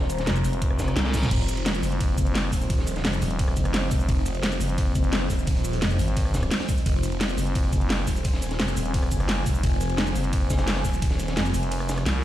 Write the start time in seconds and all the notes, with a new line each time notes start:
Already playing: D#1 F3 C4 C5 A#5
0.01 snare
0.09 closed hi-hat, cabasa
0.18 snare, closed hi-hat
0.27 F1, snare, closed hi-hat
0.36 cross-stick, closed hi-hat, cabasa
0.44 F1, closed hi-hat, open hi-hat, cabasa
0.53 closed hi-hat
0.62 kick, closed hi-hat, reverse cymbal
0.70 cross-stick
0.79 kick, snare, closed hi-hat, cabasa
0.88 cross-stick, closed hi-hat
0.96 C2, snare, closed hi-hat, high tom
1.05 snare, closed hi-hat, high tom
1.14 kick, snare, closed hi-hat, open hi-hat, cabasa
1.23 snare, closed hi-hat, mid tom, cabasa
1.31 F1 D#5, kick, closed hi-hat, ride, crash
1.49 closed hi-hat, cabasa
1.57 closed hi-hat
1.66 snare, closed hi-hat, ride
1.75 cross-stick, closed hi-hat, cabasa
1.83 F#1, closed hi-hat, open hi-hat, cabasa
1.92 closed hi-hat
2.00 kick, closed hi-hat, ride
2.18 F#1, kick, closed hi-hat, cabasa
2.27 closed hi-hat
2.35 snare, closed hi-hat, ride
2.44 cross-stick
2.53 D#1, kick, closed hi-hat, open hi-hat, cabasa
2.61 closed hi-hat, cabasa
2.70 kick, closed hi-hat, ride
2.79 snare
2.87 closed hi-hat, cabasa
2.96 snare, closed hi-hat
3.05 F1, snare, closed hi-hat, ride
3.13 cross-stick, closed hi-hat, cabasa
3.22 D#1, closed hi-hat, open hi-hat, cabasa
3.31 closed hi-hat
3.39 kick, closed hi-hat, ride
3.48 cross-stick, closed hi-hat
3.57 F#1, kick, closed hi-hat, cabasa
3.65 cross-stick, closed hi-hat
3.74 snare, closed hi-hat, ride
3.91 F1, kick, closed hi-hat, open hi-hat, cabasa
4.00 cabasa
4.09 F1, kick, closed hi-hat, ride
4.26 closed hi-hat, cabasa
4.35 closed hi-hat
4.43 snare, closed hi-hat, ride
4.52 cross-stick, closed hi-hat, cabasa
4.61 F#1, closed hi-hat, open hi-hat, cabasa
4.69 closed hi-hat
4.78 kick, closed hi-hat, ride
4.95 F#1, kick, closed hi-hat, cabasa
5.04 closed hi-hat
5.13 snare, closed hi-hat, ride
5.21 cross-stick
5.30 D#1, kick, closed hi-hat, open hi-hat, cabasa
5.39 cabasa
5.47 kick, closed hi-hat, ride
5.56 closed hi-hat
5.65 closed hi-hat, cabasa
5.73 closed hi-hat
5.82 F1, snare, closed hi-hat, ride
5.91 cross-stick, closed hi-hat, cabasa
5.99 G#1, closed hi-hat, open hi-hat, cabasa
6.08 closed hi-hat
6.16 kick, closed hi-hat, ride
6.25 cross-stick, closed hi-hat
6.34 kick, snare, closed hi-hat, cabasa
6.43 cross-stick, closed hi-hat
6.51 snare, closed hi-hat, ride
6.59 snare, closed hi-hat
6.69 kick, open hi-hat, cabasa
6.77 closed hi-hat, cabasa
6.86 F1 G#5, kick, closed hi-hat, ride
7.03 closed hi-hat, cabasa
7.12 closed hi-hat
7.20 snare, closed hi-hat, ride
7.29 cross-stick, closed hi-hat, cabasa
7.38 F#1, closed hi-hat, open hi-hat, cabasa
7.47 closed hi-hat
7.55 kick, closed hi-hat, ride
7.73 F#1, kick, closed hi-hat, cabasa
7.81 closed hi-hat
7.90 snare, closed hi-hat, ride
7.99 cross-stick
8.07 D#1, kick, closed hi-hat, open hi-hat, cabasa
8.16 closed hi-hat, cabasa
8.24 kick, closed hi-hat, ride
8.34 snare
8.42 closed hi-hat, cabasa
8.51 snare, closed hi-hat
8.59 F1, snare, closed hi-hat, ride
8.68 cross-stick, closed hi-hat, cabasa
8.77 D#1, closed hi-hat, open hi-hat, cabasa
8.86 closed hi-hat
8.94 kick, closed hi-hat, ride
9.03 cross-stick, closed hi-hat
9.11 F#1, kick, closed hi-hat, cabasa
9.20 cross-stick, closed hi-hat
9.28 snare, closed hi-hat, ride
9.46 F1, kick, closed hi-hat, open hi-hat, cabasa
9.55 cabasa
9.63 F1, kick, closed hi-hat, ride
9.81 closed hi-hat, cabasa
9.90 closed hi-hat
9.98 snare, closed hi-hat, ride
10.07 cross-stick, closed hi-hat, cabasa
10.16 F#1, closed hi-hat, open hi-hat, cabasa
10.24 closed hi-hat
10.33 kick, closed hi-hat, ride
10.50 F#1, kick, snare, closed hi-hat, cabasa
10.58 snare, closed hi-hat
10.67 snare, closed hi-hat, ride
10.76 cross-stick, snare, closed hi-hat
10.84 D#1, kick, closed hi-hat, open hi-hat, cabasa
10.93 closed hi-hat, cabasa
11.02 kick, closed hi-hat, ride
11.11 snare
11.19 closed hi-hat, cabasa
11.28 snare, closed hi-hat
11.37 F1, snare, closed hi-hat, ride
11.46 cross-stick, closed hi-hat, cabasa
11.54 F1, closed hi-hat, open hi-hat, cabasa
11.63 closed hi-hat
11.71 closed hi-hat, ride
11.80 cross-stick, closed hi-hat
11.89 snare, closed hi-hat, cabasa
11.98 cross-stick, closed hi-hat
12.06 C2, snare, closed hi-hat, ride